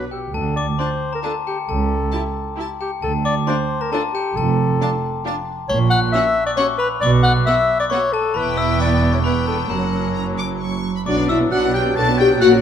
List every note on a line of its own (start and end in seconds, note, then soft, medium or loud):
0.11 0.35 G4 medium
0.11 0.33 G5 medium
0.11 0.18 E6 soft
0.33 0.71 D2 medium
0.33 0.72 D2 medium
0.33 0.56 A4 medium
0.33 0.55 A5 medium
0.56 0.66 D5 medium
0.56 0.78 D6 medium
0.78 0.87 D4 medium
0.78 0.86 F4 medium
0.78 1.12 C5 medium
0.78 0.88 A5 medium
0.78 1.10 C6 medium
1.13 1.20 A#4 medium
1.13 1.23 A#5 medium
1.23 1.31 D4 medium
1.23 1.31 F4 medium
1.23 1.35 A4 medium
1.23 1.32 A5 medium
1.23 1.45 A5 medium
1.47 1.58 G4 medium
1.47 1.68 G5 medium
1.68 2.06 C#2 medium
1.68 2.57 A4 medium
1.68 2.54 A5 medium
2.12 2.21 E4 medium
2.12 2.20 G4 medium
2.12 2.21 A5 medium
2.57 2.66 E4 medium
2.57 2.65 G4 medium
2.57 2.67 A5 medium
2.81 2.91 G4 medium
2.81 3.01 G5 medium
3.02 3.40 D2 medium
3.02 3.13 A4 medium
3.02 3.23 A5 medium
3.25 3.35 D5 loud
3.25 3.46 D6 medium
3.47 3.55 D4 medium
3.47 3.55 F4 medium
3.47 3.83 C5 medium
3.47 3.56 A5 medium
3.47 3.78 C6 medium
3.81 3.92 A#4 medium
3.81 3.91 A#5 medium
3.92 4.00 D4 medium
3.92 4.01 F4 medium
3.92 4.02 A4 medium
3.92 4.13 A5 medium
3.92 4.01 A5 medium
4.14 4.38 G4 medium
4.14 4.35 G5 medium
4.36 4.73 F1 medium
4.36 4.73 F2 medium
4.36 5.25 A4 loud
4.36 5.22 A5 medium
4.81 4.89 D4 medium
4.81 4.89 F4 medium
4.81 4.90 A5 medium
5.25 5.33 D4 medium
5.25 5.33 F4 medium
5.25 5.34 A5 medium
5.69 6.06 A#1 medium
5.69 6.07 A#2 medium
5.69 5.79 C#5 loud
5.69 5.90 C#6 loud
5.90 6.01 F#5 loud
5.90 6.12 F#6 loud
6.12 6.22 C#4 medium
6.12 6.22 F#4 medium
6.12 6.46 E5 loud
6.12 6.23 F#5 medium
6.12 6.45 E6 medium
6.47 6.52 D5 loud
6.47 6.57 D6 medium
6.57 6.66 C#4 medium
6.57 6.66 F#4 medium
6.57 6.67 C#5 loud
6.57 6.65 F#5 medium
6.57 6.79 C#6 medium
6.78 6.89 B4 loud
6.78 7.01 B5 medium
7.01 7.39 B1 medium
7.01 7.39 B2 medium
7.01 7.11 D5 loud
7.01 7.23 D6 loud
7.23 7.33 F#5 loud
7.23 7.45 F#6 loud
7.46 7.54 B3 medium
7.46 7.56 F#4 medium
7.46 7.79 E5 loud
7.46 7.55 F#5 medium
7.46 7.78 E6 loud
7.80 7.85 D5 loud
7.80 7.90 D6 medium
7.90 7.98 B3 medium
7.90 7.99 F#4 medium
7.90 8.14 C#5 loud
7.90 7.99 F#5 medium
7.90 8.11 C#6 medium
8.13 8.38 A4 loud
8.13 8.34 A5 medium
8.34 9.66 E1 medium
8.34 9.66 E2 medium
8.34 9.21 B3 medium
8.34 9.21 E4 medium
8.34 8.59 B4 medium
8.34 9.22 G5 medium
8.34 8.56 B5 medium
8.57 8.80 E5 loud
8.57 8.79 E6 medium
8.80 9.14 D5 loud
8.80 9.12 D6 medium
9.13 9.19 C#5 medium
9.13 9.24 C#6 medium
9.24 9.69 B3 medium
9.24 9.33 E4 medium
9.24 9.48 B4 medium
9.24 9.70 G5 medium
9.24 9.46 B5 medium
9.47 9.70 D4 medium
9.47 9.58 A4 medium
9.47 9.69 A5 medium
9.69 10.84 F#1 medium
9.69 10.84 F#2 medium
9.69 10.86 F#3 medium
9.69 10.86 C#4 medium
9.69 10.59 A#4 medium
9.69 10.12 F#5 medium
9.69 10.57 A#5 medium
10.15 10.23 A#5 medium
10.38 10.46 D6 medium
10.60 10.94 C#6 medium
10.96 11.00 B5 medium
11.06 11.46 B1 medium
11.06 11.46 B2 medium
11.06 12.61 F#3 medium
11.06 11.16 D4 medium
11.06 11.28 D4 medium
11.06 11.17 F#4 medium
11.06 12.37 B4 medium
11.06 11.27 D5 medium
11.06 11.28 D5 medium
11.06 11.17 D5 medium
11.06 12.37 D5 medium
11.06 11.27 D6 medium
11.17 11.29 B3 soft
11.17 11.28 D4 soft
11.29 11.39 D4 medium
11.29 11.51 E4 medium
11.29 11.40 F#4 medium
11.29 11.37 E5 medium
11.29 11.39 E5 medium
11.29 11.38 E5 medium
11.29 11.50 E6 medium
11.40 11.51 B3 medium
11.40 11.50 D4 medium
11.51 11.91 B1 medium
11.51 11.91 B2 medium
11.51 11.61 D4 medium
11.51 11.62 F#4 medium
11.51 11.74 F#4 medium
11.51 11.62 F#5 medium
11.51 11.74 F#5 medium
11.51 11.73 F#6 medium
11.62 11.74 B3 soft
11.62 11.73 D4 soft
11.73 11.84 D4 medium
11.73 11.85 F#4 medium
11.73 11.97 G4 medium
11.73 11.97 G5 medium
11.73 11.82 G5 medium
11.73 11.96 G5 medium
11.73 11.95 G6 medium
11.85 11.96 B3 soft
11.85 11.95 D4 soft
11.96 12.36 B1 medium
11.96 12.36 B2 medium
11.96 12.05 D4 medium
11.96 12.07 F#4 medium
11.96 12.07 A4 medium
11.96 12.20 A5 medium
11.96 12.18 A5 medium
11.96 12.19 A5 medium
11.96 12.18 A6 medium
12.07 12.18 B3 medium
12.07 12.17 D4 medium
12.18 12.27 D4 soft
12.18 12.29 F#4 medium
12.18 12.30 G4 medium
12.18 12.40 G5 medium
12.18 12.28 G5 medium
12.18 12.41 G5 medium
12.18 12.39 G6 medium
12.29 12.40 B3 medium
12.29 12.40 D4 medium
12.40 12.61 A#1 medium
12.40 12.61 A#2 medium
12.40 12.51 A#3 medium
12.40 12.51 F#4 medium
12.40 12.52 F#4 loud
12.40 12.61 C#5 medium
12.40 12.51 F#5 medium
12.40 12.61 F#5 medium
12.40 12.50 F#5 medium
12.40 12.61 F#6 medium
12.52 12.61 C#4 medium
12.52 12.61 A#4 medium